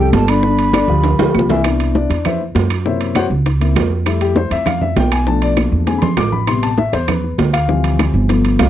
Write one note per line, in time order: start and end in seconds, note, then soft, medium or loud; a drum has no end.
0.00 0.23 G3 medium
0.00 0.23 G4 medium
0.00 0.23 A4 medium
0.00 0.13 G5 medium
0.12 0.83 G1 medium
0.12 0.31 A5 medium
0.12 high bongo soft
0.12 low bongo medium
0.12 high conga medium
0.12 high timbale medium
0.12 low timbale medium
0.28 0.41 D3 medium
0.28 0.41 D4 medium
0.28 0.41 D5 medium
0.28 1.50 B5 medium
0.28 high bongo soft
0.28 high conga soft
0.28 high timbale loud
0.28 claves medium
0.43 0.68 D3 medium
0.43 0.68 D4 medium
0.43 0.69 D5 medium
0.43 high bongo medium
0.43 high conga soft
0.58 high conga soft
0.58 high timbale medium
0.73 0.86 D3 medium
0.73 0.86 D4 medium
0.73 0.87 D5 medium
0.73 high bongo medium
0.73 high conga loud
0.73 high timbale medium
0.73 low timbale medium
0.73 claves medium
0.88 1.16 D2 medium
0.88 1.14 F3 medium
0.88 1.14 F4 medium
0.88 1.14 G4 medium
0.88 high bongo soft
0.88 high conga soft
1.04 high bongo medium
1.04 high conga soft
1.04 high timbale medium
1.19 1.33 D2 medium
1.19 1.44 F3 medium
1.19 1.45 F4 medium
1.19 1.45 G4 medium
1.19 high bongo medium
1.19 high conga soft
1.19 low timbale loud
1.34 2.04 C2 medium
1.34 high conga medium
1.34 low timbale medium
1.34 claves medium
1.39 low bongo medium
1.49 1.62 E3 medium
1.49 1.62 E4 medium
1.49 1.63 E5 medium
1.49 low bongo loud
1.49 high conga medium
1.49 low timbale medium
1.64 2.08 B3 soft
1.64 1.95 D4 soft
1.64 2.08 E4 medium
1.64 high bongo medium
1.64 high conga soft
1.64 high timbale medium
1.64 claves medium
1.80 high conga soft
1.80 high timbale medium
1.95 2.24 D4 medium
1.95 2.23 D5 medium
1.95 high bongo medium
1.95 high conga loud
1.95 low timbale medium
2.10 2.52 E2 medium
2.10 high bongo soft
2.10 high conga soft
2.10 high timbale medium
2.25 2.40 E4 medium
2.25 2.40 B4 medium
2.25 2.40 C5 medium
2.25 2.40 E5 medium
2.25 high bongo medium
2.25 high conga soft
2.25 low conga medium
2.25 high timbale medium
2.25 claves medium
2.40 high bongo soft
2.40 high conga soft
2.55 3.25 F#2 medium
2.55 high bongo soft
2.55 low bongo medium
2.55 high conga medium
2.55 high timbale medium
2.55 low timbale medium
2.70 high bongo soft
2.70 high conga soft
2.70 high timbale medium
2.70 claves medium
2.85 3.29 C3 soft
2.85 3.28 A#3 medium
2.85 3.29 E4 medium
2.85 3.14 C5 medium
2.85 3.14 C#5 medium
2.85 3.14 E5 medium
2.85 high bongo medium
2.85 high conga soft
3.01 high conga soft
3.01 high timbale medium
3.15 3.25 F#4 medium
3.15 3.25 C5 medium
3.15 3.25 C#5 medium
3.15 3.25 F#5 loud
3.15 high bongo medium
3.15 high conga loud
3.15 high timbale medium
3.15 low timbale medium
3.15 claves medium
3.30 3.73 C#2 medium
3.30 high bongo soft
3.30 high conga soft
3.45 high bongo medium
3.45 high conga soft
3.45 high timbale medium
3.60 3.74 A#3 soft
3.60 3.75 C4 soft
3.60 3.75 E4 medium
3.60 high bongo soft
3.60 high conga soft
3.60 high timbale medium
3.75 4.46 F2 medium
3.75 high bongo soft
3.75 low bongo medium
3.75 high conga medium
3.75 high timbale medium
3.75 low timbale medium
3.75 claves medium
3.90 high bongo soft
3.90 high conga medium
4.06 5.23 G3 medium
4.06 5.23 A3 soft
4.06 5.24 E4 medium
4.06 high bongo medium
4.06 high conga soft
4.06 high timbale medium
4.06 claves medium
4.21 4.36 G4 medium
4.21 high conga soft
4.21 high timbale medium
4.36 4.51 C5 medium
4.36 high bongo medium
4.36 high conga loud
4.36 low timbale medium
4.51 4.93 F2 medium
4.51 4.67 E5 medium
4.51 high bongo soft
4.51 high conga soft
4.51 high timbale medium
4.66 4.81 F5 medium
4.66 high bongo medium
4.66 high conga soft
4.66 low conga medium
4.66 high timbale medium
4.66 claves medium
4.81 4.96 E5 medium
4.81 high bongo soft
4.81 high conga soft
4.81 low conga medium
4.96 5.67 B1 medium
4.96 5.12 G5 medium
4.96 high bongo soft
4.96 low bongo medium
4.96 high conga medium
4.96 high timbale medium
4.96 low timbale medium
5.11 5.27 G#5 medium
5.11 high bongo soft
5.11 high conga soft
5.11 high timbale loud
5.11 claves medium
5.27 5.84 F3 medium
5.27 5.85 A3 soft
5.27 5.85 D4 medium
5.27 5.42 A5 medium
5.27 high bongo medium
5.27 high conga soft
5.42 5.51 D5 loud
5.42 high conga soft
5.42 high timbale medium
5.57 high bongo medium
5.57 high conga medium
5.57 high timbale medium
5.57 low timbale medium
5.57 claves medium
5.72 6.14 E2 medium
5.72 high bongo soft
5.87 6.07 D3 soft
5.87 6.08 G#3 soft
5.87 6.08 C4 medium
5.87 6.02 G#5 medium
5.87 high bongo medium
5.87 high conga medium
5.87 high timbale medium
5.98 6.01 B5 medium
5.98 high timbale medium
6.02 6.17 C6 loud
6.02 high bongo soft
6.02 low conga loud
6.17 6.87 A1 medium
6.17 6.33 D6 loud
6.17 high bongo soft
6.17 low bongo medium
6.17 high timbale loud
6.17 low timbale medium
6.17 claves medium
6.32 6.47 B5 medium
6.32 high bongo soft
6.32 low conga medium
6.47 6.68 C3 soft
6.47 6.68 G3 soft
6.47 6.68 B3 medium
6.47 6.63 C6 medium
6.47 high bongo medium
6.47 high conga soft
6.47 high timbale medium
6.47 claves medium
6.63 6.78 A5 medium
6.63 high conga soft
6.63 high timbale medium
6.78 6.93 E5 medium
6.78 high bongo medium
6.78 high conga loud
6.78 low timbale medium
6.93 7.35 E2 medium
6.93 7.08 C5 medium
6.93 high bongo soft
6.93 high conga soft
6.93 high timbale medium
7.08 7.51 B4 medium
7.08 high bongo medium
7.08 high conga soft
7.08 low conga medium
7.08 high timbale medium
7.08 claves medium
7.24 high bongo soft
7.24 high conga soft
7.38 8.09 D2 medium
7.38 high bongo soft
7.38 low bongo medium
7.38 high conga medium
7.38 high timbale medium
7.38 low timbale medium
7.53 7.96 F5 loud
7.53 high bongo soft
7.53 high conga soft
7.53 high timbale medium
7.53 claves medium
7.68 8.27 E3 medium
7.68 8.26 F3 medium
7.68 8.26 G3 soft
7.68 8.26 C4 medium
7.68 high bongo medium
7.68 high conga soft
7.84 high conga soft
7.84 high timbale medium
7.99 high bongo medium
7.99 high conga loud
7.99 high timbale medium
7.99 low timbale medium
7.99 claves medium
8.14 8.56 G1 medium
8.14 high bongo soft
8.14 high conga soft
8.29 8.70 F3 medium
8.29 8.70 A3 soft
8.29 8.70 B3 medium
8.29 high bongo medium
8.29 high conga soft
8.29 high timbale medium
8.44 high bongo soft
8.44 high conga soft
8.44 high timbale medium
8.59 8.70 C2 medium
8.59 8.70 F5 medium
8.59 high bongo soft
8.59 low bongo medium
8.59 high conga medium
8.59 high timbale loud
8.59 low timbale medium
8.59 claves medium